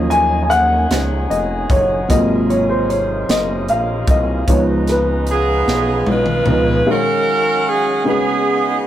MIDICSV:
0, 0, Header, 1, 7, 480
1, 0, Start_track
1, 0, Tempo, 794702
1, 1266, Time_signature, 6, 3, 24, 8
1, 5357, End_track
2, 0, Start_track
2, 0, Title_t, "Upright piano"
2, 0, Program_c, 0, 0
2, 0, Control_c, 0, 64, 127
2, 0, Note_on_c, 0, 53, 55
2, 0, Note_on_c, 0, 54, 47
2, 0, Note_on_c, 0, 61, 46
2, 0, Note_on_c, 0, 75, 93
2, 62, Note_on_c, 0, 80, 96
2, 248, Note_off_c, 0, 80, 0
2, 258, Note_on_c, 0, 80, 71
2, 301, Note_on_c, 0, 78, 105
2, 302, Note_off_c, 0, 80, 0
2, 516, Note_off_c, 0, 54, 0
2, 518, Note_off_c, 0, 61, 0
2, 520, Note_off_c, 0, 53, 0
2, 760, Note_off_c, 0, 78, 0
2, 787, Note_off_c, 0, 75, 0
2, 787, Note_on_c, 0, 75, 83
2, 1030, Note_on_c, 0, 73, 83
2, 1034, Note_off_c, 0, 75, 0
2, 1251, Note_off_c, 0, 73, 0
2, 1260, Note_on_c, 0, 54, 51
2, 1265, Note_on_c, 0, 48, 46
2, 1265, Note_on_c, 0, 58, 48
2, 1270, Note_on_c, 0, 65, 58
2, 1270, Note_on_c, 0, 75, 93
2, 1274, Control_c, 0, 64, 0
2, 1380, Control_c, 0, 64, 127
2, 1509, Note_on_c, 0, 73, 76
2, 1515, Note_off_c, 0, 75, 0
2, 1627, Note_on_c, 0, 72, 75
2, 1631, Note_off_c, 0, 73, 0
2, 1749, Note_on_c, 0, 73, 76
2, 1750, Note_off_c, 0, 72, 0
2, 1995, Note_off_c, 0, 73, 0
2, 1996, Note_on_c, 0, 75, 86
2, 2232, Note_on_c, 0, 77, 81
2, 2238, Note_off_c, 0, 75, 0
2, 2453, Note_off_c, 0, 77, 0
2, 2477, Note_on_c, 0, 75, 86
2, 2679, Note_off_c, 0, 54, 0
2, 2682, Note_off_c, 0, 48, 0
2, 2682, Note_off_c, 0, 58, 0
2, 2684, Note_off_c, 0, 65, 0
2, 2695, Note_off_c, 0, 75, 0
2, 2709, Note_on_c, 0, 59, 46
2, 2710, Note_on_c, 0, 53, 53
2, 2714, Control_c, 0, 64, 0
2, 2716, Note_on_c, 0, 63, 58
2, 2716, Note_on_c, 0, 73, 78
2, 2769, Note_off_c, 0, 73, 0
2, 2821, Control_c, 0, 64, 127
2, 2956, Note_on_c, 0, 71, 74
2, 3027, Note_off_c, 0, 53, 0
2, 3027, Note_off_c, 0, 59, 0
2, 3030, Note_off_c, 0, 63, 0
2, 3407, Note_off_c, 0, 71, 0
2, 3910, Note_on_c, 0, 53, 51
2, 3913, Note_on_c, 0, 59, 44
2, 3914, Note_on_c, 0, 63, 53
2, 4124, Note_off_c, 0, 53, 0
2, 4126, Note_off_c, 0, 59, 0
2, 4126, Note_off_c, 0, 63, 0
2, 4144, Note_on_c, 0, 56, 64
2, 4146, Note_on_c, 0, 63, 60
2, 4147, Note_on_c, 0, 77, 55
2, 4148, Note_on_c, 0, 51, 59
2, 4152, Note_on_c, 0, 66, 57
2, 4154, Control_c, 0, 64, 0
2, 4156, Note_on_c, 0, 72, 53
2, 4189, Note_off_c, 0, 72, 0
2, 4195, Note_on_c, 0, 73, 63
2, 4273, Control_c, 0, 64, 127
2, 4841, Note_off_c, 0, 51, 0
2, 4848, Note_off_c, 0, 56, 0
2, 4855, Note_off_c, 0, 63, 0
2, 4857, Note_off_c, 0, 66, 0
2, 4857, Note_on_c, 0, 56, 62
2, 4861, Note_on_c, 0, 61, 60
2, 4864, Note_off_c, 0, 77, 0
2, 4864, Note_on_c, 0, 49, 64
2, 4864, Note_on_c, 0, 63, 57
2, 4866, Note_on_c, 0, 66, 59
2, 4868, Note_on_c, 0, 71, 71
2, 4872, Control_c, 0, 64, 0
2, 4889, Note_off_c, 0, 73, 0
2, 4960, Control_c, 0, 64, 127
2, 5357, Note_off_c, 0, 49, 0
2, 5357, Note_off_c, 0, 56, 0
2, 5357, Note_off_c, 0, 61, 0
2, 5357, Note_off_c, 0, 63, 0
2, 5357, Note_off_c, 0, 66, 0
2, 5357, Note_off_c, 0, 71, 0
2, 5357, End_track
3, 0, Start_track
3, 0, Title_t, "Saxophone section"
3, 0, Program_c, 1, 65
3, 3205, Note_on_c, 1, 65, 69
3, 3207, Note_on_c, 1, 59, 66
3, 3208, Note_on_c, 1, 68, 88
3, 3652, Note_off_c, 1, 68, 0
3, 3672, Note_off_c, 1, 65, 0
3, 3679, Note_on_c, 1, 65, 70
3, 3681, Note_on_c, 1, 63, 70
3, 3686, Note_on_c, 1, 71, 100
3, 3892, Note_off_c, 1, 59, 0
3, 4127, Note_off_c, 1, 65, 0
3, 4128, Note_off_c, 1, 63, 0
3, 4155, Note_off_c, 1, 71, 0
3, 4164, Note_on_c, 1, 66, 81
3, 4167, Note_on_c, 1, 61, 78
3, 4172, Note_on_c, 1, 70, 109
3, 4638, Note_off_c, 1, 70, 0
3, 4645, Note_on_c, 1, 68, 90
3, 4849, Note_off_c, 1, 66, 0
3, 4850, Note_off_c, 1, 61, 0
3, 4870, Note_on_c, 1, 59, 72
3, 4871, Note_on_c, 1, 63, 69
3, 4874, Note_off_c, 1, 68, 0
3, 4883, Note_on_c, 1, 68, 93
3, 5328, Note_off_c, 1, 68, 0
3, 5357, Note_off_c, 1, 59, 0
3, 5357, Note_off_c, 1, 63, 0
3, 5357, End_track
4, 0, Start_track
4, 0, Title_t, "Tonewheel organ"
4, 0, Program_c, 2, 16
4, 0, Note_on_c, 2, 51, 59
4, 0, Note_on_c, 2, 61, 52
4, 0, Note_on_c, 2, 63, 52
4, 0, Note_on_c, 2, 73, 61
4, 1241, Note_off_c, 2, 73, 0
4, 1242, Note_off_c, 2, 51, 0
4, 1243, Note_off_c, 2, 61, 0
4, 1243, Note_off_c, 2, 63, 0
4, 1256, Note_on_c, 2, 70, 66
4, 1258, Note_on_c, 2, 65, 54
4, 1262, Note_on_c, 2, 48, 54
4, 1262, Note_on_c, 2, 54, 60
4, 2678, Note_off_c, 2, 65, 0
4, 2678, Note_off_c, 2, 70, 0
4, 2680, Note_off_c, 2, 54, 0
4, 2681, Note_off_c, 2, 48, 0
4, 2698, Note_on_c, 2, 53, 60
4, 2700, Note_on_c, 2, 61, 52
4, 2702, Note_on_c, 2, 71, 64
4, 2703, Note_on_c, 2, 63, 53
4, 3644, Note_off_c, 2, 71, 0
4, 3661, Note_on_c, 2, 68, 51
4, 3663, Note_on_c, 2, 73, 58
4, 3777, Note_off_c, 2, 68, 0
4, 3778, Note_off_c, 2, 73, 0
4, 3778, Note_on_c, 2, 77, 66
4, 3781, Note_on_c, 2, 71, 56
4, 3895, Note_off_c, 2, 77, 0
4, 3897, Note_off_c, 2, 71, 0
4, 3900, Note_on_c, 2, 75, 70
4, 3903, Note_on_c, 2, 70, 59
4, 4014, Note_on_c, 2, 73, 61
4, 4016, Note_off_c, 2, 75, 0
4, 4018, Note_off_c, 2, 70, 0
4, 4019, Note_on_c, 2, 68, 50
4, 4117, Note_off_c, 2, 53, 0
4, 4118, Note_off_c, 2, 61, 0
4, 4119, Note_off_c, 2, 63, 0
4, 4132, Note_on_c, 2, 61, 57
4, 4133, Note_on_c, 2, 51, 62
4, 4136, Note_on_c, 2, 54, 53
4, 4137, Note_on_c, 2, 56, 59
4, 4138, Note_on_c, 2, 77, 69
4, 4247, Note_off_c, 2, 73, 0
4, 4250, Note_off_c, 2, 68, 0
4, 4842, Note_off_c, 2, 51, 0
4, 4846, Note_off_c, 2, 61, 0
4, 4848, Note_off_c, 2, 56, 0
4, 4849, Note_on_c, 2, 51, 61
4, 4853, Note_on_c, 2, 61, 56
4, 4855, Note_on_c, 2, 56, 56
4, 4856, Note_on_c, 2, 66, 65
4, 4857, Note_on_c, 2, 59, 57
4, 4859, Note_off_c, 2, 54, 0
4, 4860, Note_off_c, 2, 77, 0
4, 5357, Note_off_c, 2, 51, 0
4, 5357, Note_off_c, 2, 56, 0
4, 5357, Note_off_c, 2, 59, 0
4, 5357, Note_off_c, 2, 61, 0
4, 5357, Note_off_c, 2, 66, 0
4, 5357, End_track
5, 0, Start_track
5, 0, Title_t, "French horn section"
5, 0, Program_c, 3, 60
5, 0, Note_on_c, 3, 51, 70
5, 0, Note_on_c, 3, 61, 64
5, 0, Note_on_c, 3, 63, 67
5, 0, Note_on_c, 3, 68, 75
5, 1248, Note_off_c, 3, 63, 0
5, 1250, Note_off_c, 3, 61, 0
5, 1270, Note_on_c, 3, 48, 65
5, 1271, Note_on_c, 3, 58, 65
5, 2679, Note_off_c, 3, 51, 0
5, 2680, Note_off_c, 3, 68, 0
5, 2694, Note_off_c, 3, 48, 0
5, 2695, Note_off_c, 3, 58, 0
5, 2700, Note_on_c, 3, 59, 65
5, 2702, Note_on_c, 3, 53, 69
5, 2703, Note_on_c, 3, 63, 78
5, 2704, Note_on_c, 3, 61, 66
5, 4128, Note_off_c, 3, 53, 0
5, 4128, Note_off_c, 3, 59, 0
5, 4129, Note_off_c, 3, 61, 0
5, 4129, Note_off_c, 3, 63, 0
5, 5357, End_track
6, 0, Start_track
6, 0, Title_t, "Analog synth bass"
6, 0, Program_c, 4, 38
6, 0, Note_on_c, 4, 39, 104
6, 522, Note_off_c, 4, 39, 0
6, 546, Note_on_c, 4, 37, 91
6, 767, Note_off_c, 4, 37, 0
6, 784, Note_on_c, 4, 29, 84
6, 1006, Note_off_c, 4, 29, 0
6, 1027, Note_on_c, 4, 30, 97
6, 1247, Note_off_c, 4, 30, 0
6, 1267, Note_on_c, 4, 32, 102
6, 1963, Note_off_c, 4, 32, 0
6, 1984, Note_on_c, 4, 30, 90
6, 2225, Note_on_c, 4, 34, 85
6, 2234, Note_off_c, 4, 30, 0
6, 2447, Note_off_c, 4, 34, 0
6, 2462, Note_on_c, 4, 36, 102
6, 2685, Note_off_c, 4, 36, 0
6, 2706, Note_on_c, 4, 37, 104
6, 3402, Note_off_c, 4, 37, 0
6, 3427, Note_on_c, 4, 35, 91
6, 3647, Note_off_c, 4, 35, 0
6, 3664, Note_on_c, 4, 35, 83
6, 3885, Note_off_c, 4, 35, 0
6, 3901, Note_on_c, 4, 37, 92
6, 4124, Note_off_c, 4, 37, 0
6, 5357, End_track
7, 0, Start_track
7, 0, Title_t, "Drums"
7, 66, Note_on_c, 9, 42, 46
7, 126, Note_off_c, 9, 42, 0
7, 308, Note_on_c, 9, 42, 51
7, 369, Note_off_c, 9, 42, 0
7, 548, Note_on_c, 9, 42, 78
7, 551, Note_on_c, 9, 38, 85
7, 608, Note_off_c, 9, 42, 0
7, 611, Note_off_c, 9, 38, 0
7, 793, Note_on_c, 9, 42, 46
7, 853, Note_off_c, 9, 42, 0
7, 1025, Note_on_c, 9, 36, 91
7, 1029, Note_on_c, 9, 42, 45
7, 1085, Note_off_c, 9, 36, 0
7, 1089, Note_off_c, 9, 42, 0
7, 1267, Note_on_c, 9, 36, 85
7, 1268, Note_on_c, 9, 42, 81
7, 1327, Note_off_c, 9, 36, 0
7, 1328, Note_off_c, 9, 42, 0
7, 1512, Note_on_c, 9, 42, 44
7, 1573, Note_off_c, 9, 42, 0
7, 1752, Note_on_c, 9, 42, 48
7, 1813, Note_off_c, 9, 42, 0
7, 1989, Note_on_c, 9, 42, 75
7, 1992, Note_on_c, 9, 38, 85
7, 2050, Note_off_c, 9, 42, 0
7, 2053, Note_off_c, 9, 38, 0
7, 2225, Note_on_c, 9, 42, 47
7, 2286, Note_off_c, 9, 42, 0
7, 2461, Note_on_c, 9, 36, 92
7, 2461, Note_on_c, 9, 42, 50
7, 2521, Note_off_c, 9, 42, 0
7, 2522, Note_off_c, 9, 36, 0
7, 2704, Note_on_c, 9, 36, 83
7, 2704, Note_on_c, 9, 42, 91
7, 2764, Note_off_c, 9, 42, 0
7, 2765, Note_off_c, 9, 36, 0
7, 2944, Note_on_c, 9, 42, 51
7, 2947, Note_on_c, 9, 38, 27
7, 3005, Note_off_c, 9, 42, 0
7, 3007, Note_off_c, 9, 38, 0
7, 3181, Note_on_c, 9, 42, 52
7, 3241, Note_off_c, 9, 42, 0
7, 3430, Note_on_c, 9, 38, 51
7, 3491, Note_off_c, 9, 38, 0
7, 3664, Note_on_c, 9, 48, 69
7, 3724, Note_off_c, 9, 48, 0
7, 3779, Note_on_c, 9, 47, 64
7, 3840, Note_off_c, 9, 47, 0
7, 3899, Note_on_c, 9, 45, 88
7, 3960, Note_off_c, 9, 45, 0
7, 5357, End_track
0, 0, End_of_file